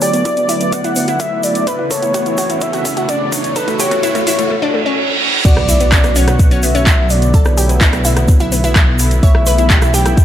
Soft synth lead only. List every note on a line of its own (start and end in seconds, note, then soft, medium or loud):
0.02 0.74 D5 loud
0.73 1.21 F#5 loud
1.20 1.45 E5 loud
1.43 1.69 D5 loud
1.67 1.92 B4 loud
1.91 2.63 C#5 loud
2.62 3.08 E5 loud
3.09 3.34 D5 loud
3.32 3.55 C#5 medium
3.56 3.81 B4 loud
3.80 4.51 C#5 loud
5.45 6.17 D5 loud
6.16 6.64 F#5 loud
6.63 7.12 E5 loud
7.10 7.58 D5 medium
9.23 9.95 E5 loud
9.94 10.25 G5 loud